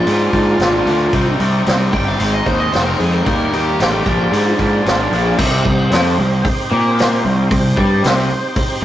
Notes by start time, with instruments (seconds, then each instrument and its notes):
Already playing: tonewheel organ A#3 D4 F4 A#4, lead electric guitar F4
0.07 picked electric bass G#2, overdriven electric guitar A#2 D3 F3 A#3 D4, open hi-hat
0.33 picked electric bass G#2, overdriven electric guitar A#2 D3 F3 A#3 D4, kick, open hi-hat
0.59 picked electric bass G#1, overdriven electric guitar A#2 D3 F3 A#3 D4, snare, open hi-hat
0.86 picked electric bass D2, overdriven electric guitar A#2 D3 F3 A#3 D4, open hi-hat
1.13 picked electric bass C2, overdriven electric guitar C3 G3 C4 D#4, tonewheel organ C4 D#4 G4 C5, kick, open hi-hat
1.39 picked electric bass C2, overdriven electric guitar C3 G3 C4 D#4, open hi-hat
1.66 picked electric bass C2, overdriven electric guitar C3 G3 C4 D#4, snare, open hi-hat
1.93 picked electric bass G1, overdriven electric guitar C3 G3 C4 D#4, lead electric guitar G5, kick, open hi-hat
2.08 lead electric guitar F5
2.19 picked electric bass G#1, overdriven electric guitar G#2 D#3 G#3 C4 D#4, tonewheel organ C4 D#4 G#4 C5, lead electric guitar F5, open hi-hat
2.33 lead electric guitar D#5
2.46 picked electric bass D#2, overdriven electric guitar G#2 D#3 G#3 C4 D#4, lead electric guitar C5, kick, open hi-hat
2.60 lead electric guitar D#5
2.72 picked electric bass F1, overdriven electric guitar G#2 D#3 G#3 C4 D#4, lead electric guitar C5, snare, open hi-hat
2.86 lead electric guitar A#4
2.98 picked electric bass F2, overdriven electric guitar G#2 D#3 G#3 C4 D#4, lead electric guitar G#4, open hi-hat
3.13 lead electric guitar A#4
3.25 picked electric bass D#2, overdriven electric guitar D#3 G3 A#3 D#4, tonewheel organ A#3 D#4 G4 A#4, lead electric guitar A#4, kick, open hi-hat
3.53 picked electric bass D#2, overdriven electric guitar D#3 G3 A#3 D#4, lead electric guitar G4, open hi-hat
3.79 picked electric bass A1, overdriven electric guitar D#3 G3 A#3 D#4, snare, open hi-hat
4.05 picked electric bass A#1, overdriven electric guitar A#2 D3 F3 A#3 D4, tonewheel organ A#3 D4 F4 A#4, kick, open hi-hat
4.32 picked electric bass G#2, overdriven electric guitar A#2 D3 F3 A#3 D4, open hi-hat
4.58 picked electric bass G#2, overdriven electric guitar A#2 D3 F3 A#3 D4, kick, open hi-hat
4.85 picked electric bass G#1, overdriven electric guitar A#2 D3 F3 A#3 D4, snare, open hi-hat
5.11 picked electric bass A#1, overdriven electric guitar A#2 D3 F3 A#3 D4, open hi-hat
5.38 picked electric bass C2, overdriven electric guitar C3, tonewheel organ C4 D#4 G4 C5, kick, crash
5.65 picked electric bass C2, overdriven electric guitar C3, kick
5.91 picked electric bass F2, overdriven electric guitar F3, snare, open hi-hat
6.18 picked electric bass C2, overdriven electric guitar C3
6.44 muted overdriven electric guitar stroke, muted picked electric bass stroke, kick, open hi-hat
6.71 picked electric bass A#2, overdriven electric guitar A#3
6.99 snare, open hi-hat
7.24 picked electric bass C2, overdriven electric guitar C3
7.50 picked electric bass C2, overdriven electric guitar C3, kick, open hi-hat
7.77 picked electric bass G2, overdriven electric guitar G3, kick
8.04 picked electric bass C2, overdriven electric guitar C3, snare, open hi-hat
8.56 kick, open hi-hat